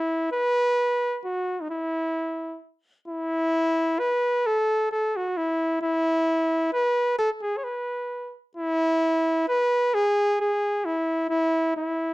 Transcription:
Already playing: E4
0.32 B4
1.25 F#4
1.62 D#4
1.70 E4
3.08 E4
3.99 B4
4.47 A4
4.92 A4
5.16 F#4
5.37 E4
5.82 E4
6.73 B4
7.19 A4
7.42 G#4
7.57 C#5
7.64 B4
8.57 E4
9.48 B4
9.94 G#4
10.41 G#4
10.85 E4
11.30 E4
11.77 E4

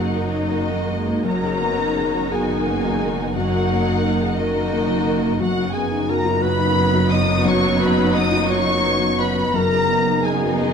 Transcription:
Already playing: F#1 F#2 F#3 A#3 D#4 F#4 A#4 F#5
0.00 G#4
0.14 F#3 A#3 D#4 A#4 D#5
0.19 F#4
0.32 D#4
0.51 D#3 A#3
0.70 F#3
0.89 G#3 A#4
1.07 A#3
1.24 F#1 F#2 F#3 C#4 D#4 F#4 A#4 A#5
1.44 G#4
1.60 F#3 B3
1.78 D#4
1.95 D#3 G#4
2.14 F#4
2.29 B3 D#4 G#4 G#5
2.49 D#4
2.65 A#3 B3
2.85 F#3
3.00 G#3 G#4
3.20 B3
3.34 F#2 F#3 A#3 D#4 F#4 A#4 F#5
3.53 A#4
3.70 F#3 A#3
3.89 D#4
4.04 D#3 A#4
4.21 G#4
4.37 D#3 A#3 D#4 F#4 A#4 D#5
4.56 D#4
4.73 A#3
4.90 F#3
5.06 A#4
5.23 A#3
5.39 F#1 F#2 F#3 B3 D#4 F#4 F#5
5.57 F#4
5.74 B3 G#4 G#5
5.92 D#4
6.09 F#4 A#4 A#5
6.25 F4
6.42 F#4 B4 B5
6.58 D#4
6.76 B3
6.94 F#3
7.11 F#4 D#5 D#6
7.28 B3
7.45 F#2 C#5 C#6
7.62 F#4
7.80 B3 B4 B5
7.97 D#4
8.13 F#4 D#5 D#6
8.32 F4
8.48 F#4 C#5 C#6
8.66 D#4
8.82 B3
9.00 F#3
9.17 F#4 B4 B5
9.36 B3
9.53 F#1 F#2 D#3 B3 D#4 G#4 A#4 A#5
9.71 G#4
9.88 B3
10.05 D#4
10.24 G#4 G#5
10.41 F#4
10.60 D#4 G#4 D#5

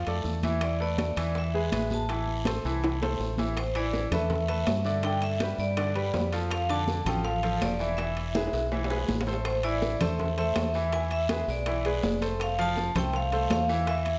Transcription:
0.06 F2 A3 A4 D5, high bongo, high conga, high timbale
0.24 E2, high bongo, low bongo, high conga, short guiro
0.42 E3 E4 E5, high bongo, high conga, high timbale, short guiro
0.61 D5, high bongo, high conga, high timbale, long guiro
0.80 A3 A4 B4 D5, high conga
0.98 high bongo, high conga, high timbale, short guiro
1.16 E2 E3 E4 E5, high bongo, high timbale, short guiro
1.35 E5, high bongo, high conga, long guiro
1.54 G#3 G#4 B4, high bongo, high conga
1.72 A1 G#3 G#4 B4, high bongo, low bongo, high conga, high timbale, short guiro
1.90 A5, high bongo, high conga, short guiro
2.09 E3 E4 E5, high bongo, high conga, high timbale, long guiro
2.27 high conga
2.45 A3 A4 C5, high bongo, high conga, high timbale, short guiro
2.65 C2 E3 E4 E5, high bongo, short guiro
2.83 high bongo, high conga, high timbale, long guiro
3.01 A3 A4 C5, high bongo, high conga, low timbale
3.19 A1, high bongo, low bongo, high conga, short guiro
3.38 E3 E4 E5, high bongo, high conga, low timbale, short guiro
3.56 C5, high bongo, high conga, high timbale, long guiro
3.75 E3 E4 D5 E5, high conga, high timbale
3.93 high bongo, high conga, low timbale, short guiro
4.11 E2 A3 A4 B4 E5, high bongo, high conga, low conga, high timbale, short guiro
4.30 high bongo, high conga, low conga, long guiro
4.48 A3 A4 B4 E5, high bongo, high conga, high timbale
4.67 G2, high bongo, low bongo, high conga, high timbale, low timbale, short guiro
4.85 D3 D4 D5, high bongo, high conga, short guiro
5.03 D3 D4 D5 G5, high bongo, high conga, high timbale, long guiro
5.22 E5, high conga, high timbale
5.40 G3 G4 B4, high bongo, high conga, high timbale, low timbale, short guiro
5.58 G2 D5, high bongo, high conga, short guiro
5.77 D3 D4 D5, high bongo, high conga, high timbale, long guiro
5.95 G3 G4 B4, high bongo, high conga, high timbale
6.14 F2, high bongo, low bongo, high conga, low timbale, short guiro
6.33 F3 F4 A4, high bongo, high conga, high timbale, short guiro
6.51 F5, high bongo, high conga, high timbale, long guiro
6.69 D3 D4 D5 A5, high conga, high timbale
6.88 high bongo, high conga, low timbale, short guiro
7.05 A1 F3 F4 A4 G5, high bongo, high conga, low conga, high timbale, short guiro
7.24 F5, high bongo, high conga, long guiro
7.43 F3 F4 A4, high bongo, high conga, high timbale
7.61 E1 D5, high bongo, low bongo, high conga, high timbale, low timbale, short guiro
7.79 E3 E4 E5, high bongo, high conga, short guiro
7.97 E3 E4 E5, high bongo, high conga, high timbale, long guiro
8.17 high conga, high timbale
8.35 G#3 G#4 B4 E5, high bongo, high conga, high timbale, short guiro
8.47 high timbale
8.53 B1, high bongo, high conga, short guiro
8.72 E3 E4 E5, low bongo, high conga, low timbale, long guiro
8.84 low timbale
8.90 G#3 G#4 B4, low bongo, high conga
8.96 low timbale
9.08 A1, low bongo, high conga, low timbale, short guiro
9.21 low timbale
9.27 A3 A4 C5, low bongo, high conga, short guiro
9.33 low timbale
9.45 C5, high bongo, high conga, high timbale, long guiro
9.63 E3 E4 D5 E5, high conga, high timbale
9.82 high bongo, high conga, low timbale, short guiro
10.00 E2 A3 A4 C5 E5, high conga, low conga, high timbale, short guiro
10.19 high bongo, high conga, low conga, long guiro
10.38 A3 A4 C5 E5, high bongo, high conga, high timbale
10.56 E2, high bongo, low bongo, high conga, high timbale, low timbale, short guiro
10.74 E3 E4 E5, high bongo, high conga, short guiro
10.92 E3 E4 E5 G#5, high bongo, high conga, high timbale, long guiro
11.11 E5, high conga, high timbale
11.29 G#3 G#4 B4, high bongo, high conga, high timbale, low timbale, short guiro
11.48 B1 D5, high bongo, high conga, short guiro
11.66 E3 E4 E5, high bongo, high conga, high timbale, long guiro
11.85 G#3 G#4 B4, high bongo, high conga, high timbale
12.03 F1, high bongo, low bongo, high conga, low timbale, short guiro
12.22 A3 A4 C5, high bongo, high conga, high timbale, short guiro
12.40 F5, high bongo, high conga, high timbale, long guiro
12.59 F3 F4 F5 A5, high conga, high timbale
12.76 high bongo, high conga, low timbale, short guiro
12.95 C2 A3 A4 C5 G5, high conga, low conga, high timbale, short guiro
13.13 F5, high bongo, high conga, long guiro
13.32 A3 A4 C5, high bongo, high conga, high timbale
13.50 E2 F5, high bongo, low bongo, high conga, high timbale, low timbale, short guiro
13.69 E3 E4 E5, high bongo, high conga, short guiro
13.87 E3 E4 E5, high bongo, high conga, high timbale, long guiro
14.06 high conga, high timbale

